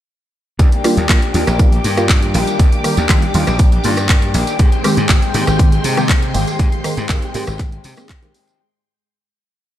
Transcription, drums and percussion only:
0.59 kick, closed hi-hat, tambourine
0.72 closed hi-hat
0.84 cross-stick, open hi-hat, tambourine
0.97 closed hi-hat, tambourine
1.09 kick, clap, closed hi-hat
1.22 closed hi-hat
1.34 open hi-hat, tambourine
1.47 cross-stick, closed hi-hat, tambourine
1.59 kick, closed hi-hat, tambourine
1.72 closed hi-hat
1.84 open hi-hat, tambourine
1.97 cross-stick, closed hi-hat, tambourine
2.09 kick, clap, closed hi-hat
2.22 closed hi-hat
2.34 open hi-hat, tambourine
2.47 closed hi-hat, tambourine
2.59 kick, closed hi-hat, tambourine
2.72 closed hi-hat
2.84 cross-stick, open hi-hat, tambourine
2.97 closed hi-hat, tambourine
3.09 kick, clap, closed hi-hat
3.22 closed hi-hat
3.34 open hi-hat, tambourine
3.47 cross-stick, closed hi-hat, tambourine
3.59 kick, closed hi-hat
3.72 closed hi-hat
3.84 open hi-hat, tambourine
3.97 cross-stick, closed hi-hat, tambourine
4.09 kick, clap, closed hi-hat
4.22 closed hi-hat
4.34 open hi-hat, tambourine
4.47 closed hi-hat, tambourine
4.59 kick, closed hi-hat, tambourine
4.72 closed hi-hat
4.84 cross-stick, open hi-hat, tambourine
4.97 closed hi-hat, tambourine
5.09 kick, clap, closed hi-hat
5.22 closed hi-hat
5.34 open hi-hat, tambourine
5.47 cross-stick, closed hi-hat, tambourine
5.59 kick, closed hi-hat
5.72 closed hi-hat
5.84 open hi-hat, tambourine
5.97 cross-stick, closed hi-hat, tambourine
6.09 kick, clap, closed hi-hat, tambourine
6.22 closed hi-hat
6.34 open hi-hat, tambourine
6.47 closed hi-hat, tambourine
6.59 kick, closed hi-hat, tambourine
6.72 closed hi-hat
6.84 cross-stick, open hi-hat, tambourine
6.97 closed hi-hat, tambourine
7.09 kick, clap, closed hi-hat, tambourine
7.22 closed hi-hat
7.34 open hi-hat, tambourine
7.47 cross-stick, closed hi-hat, tambourine
7.59 kick, clap, closed hi-hat, tambourine
7.72 closed hi-hat
7.84 open hi-hat, tambourine
7.97 cross-stick, closed hi-hat, tambourine
8.09 kick, clap, closed hi-hat
8.23 closed hi-hat
8.34 open hi-hat, tambourine
8.48 closed hi-hat, tambourine

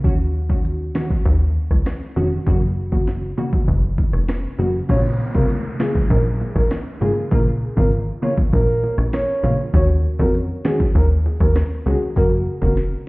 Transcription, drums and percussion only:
0.04 kick, closed hi-hat
0.49 kick, high bongo
0.65 closed hi-hat
0.95 cross-stick, snare, high bongo, low bongo
1.10 kick, high bongo
1.25 kick, closed hi-hat
1.71 kick, cross-stick
1.86 cross-stick, snare, closed hi-hat, high bongo
2.17 low bongo
2.47 kick, closed hi-hat
2.92 kick, high bongo
3.07 snare, closed hi-hat, high bongo
3.38 high bongo, low bongo
3.53 kick, high bongo
3.68 kick, closed hi-hat
3.98 kick, high bongo
4.13 cross-stick
4.29 cross-stick, snare, closed hi-hat, high bongo
4.59 low bongo
4.89 kick, closed hi-hat, crash
5.34 kick, high bongo
5.50 closed hi-hat
5.80 cross-stick, snare, high bongo, low bongo
5.95 kick, high bongo
6.10 kick, closed hi-hat
6.41 high bongo
6.56 kick, cross-stick
6.71 cross-stick, snare, closed hi-hat, high bongo
7.01 low bongo
7.31 kick, closed hi-hat
7.77 kick, high bongo
7.92 closed hi-hat
8.23 high bongo, low bongo
8.38 kick, high bongo
8.53 kick, closed hi-hat
8.83 high bongo
8.98 cross-stick
9.13 cross-stick, snare, closed hi-hat, high bongo
9.44 low bongo
9.74 kick, closed hi-hat
10.19 kick, high bongo
10.35 closed hi-hat
10.65 cross-stick, snare, high bongo, low bongo
10.80 kick, high bongo
10.95 kick, closed hi-hat
11.26 high bongo
11.40 kick, cross-stick
11.56 cross-stick, snare, closed hi-hat, high bongo
11.86 low bongo
12.16 kick, closed hi-hat
12.62 kick, high bongo
12.77 snare, closed hi-hat

